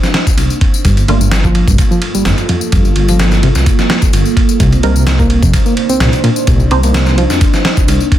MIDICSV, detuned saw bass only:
0, 0, Header, 1, 2, 480
1, 0, Start_track
1, 0, Tempo, 468750
1, 871, Time_signature, 4, 2, 24, 8
1, 8385, End_track
2, 0, Start_track
2, 0, Title_t, "Detuned saw bass"
2, 0, Program_c, 0, 39
2, 273, Note_on_c, 0, 36, 46
2, 366, Note_off_c, 0, 36, 0
2, 384, Note_on_c, 0, 36, 104
2, 485, Note_off_c, 0, 36, 0
2, 868, Note_on_c, 0, 31, 103
2, 1056, Note_off_c, 0, 31, 0
2, 1110, Note_on_c, 0, 31, 87
2, 1670, Note_off_c, 0, 31, 0
2, 1714, Note_on_c, 0, 36, 83
2, 1803, Note_off_c, 0, 36, 0
2, 2202, Note_on_c, 0, 31, 42
2, 2291, Note_off_c, 0, 31, 0
2, 2309, Note_on_c, 0, 31, 103
2, 2407, Note_off_c, 0, 31, 0
2, 2790, Note_on_c, 0, 31, 99
2, 2977, Note_off_c, 0, 31, 0
2, 3032, Note_on_c, 0, 31, 85
2, 3591, Note_off_c, 0, 31, 0
2, 3638, Note_on_c, 0, 36, 83
2, 3725, Note_off_c, 0, 36, 0
2, 4118, Note_on_c, 0, 31, 45
2, 4209, Note_off_c, 0, 31, 0
2, 4231, Note_on_c, 0, 31, 106
2, 4328, Note_off_c, 0, 31, 0
2, 4710, Note_on_c, 0, 36, 101
2, 4897, Note_off_c, 0, 36, 0
2, 4948, Note_on_c, 0, 36, 83
2, 5509, Note_off_c, 0, 36, 0
2, 5555, Note_on_c, 0, 41, 84
2, 5643, Note_off_c, 0, 41, 0
2, 6034, Note_on_c, 0, 36, 44
2, 6127, Note_off_c, 0, 36, 0
2, 6142, Note_on_c, 0, 36, 107
2, 6244, Note_off_c, 0, 36, 0
2, 6628, Note_on_c, 0, 36, 97
2, 6816, Note_off_c, 0, 36, 0
2, 6869, Note_on_c, 0, 36, 82
2, 7429, Note_off_c, 0, 36, 0
2, 7478, Note_on_c, 0, 41, 83
2, 7564, Note_off_c, 0, 41, 0
2, 7960, Note_on_c, 0, 36, 45
2, 8050, Note_off_c, 0, 36, 0
2, 8069, Note_on_c, 0, 36, 103
2, 8168, Note_off_c, 0, 36, 0
2, 8385, End_track
0, 0, End_of_file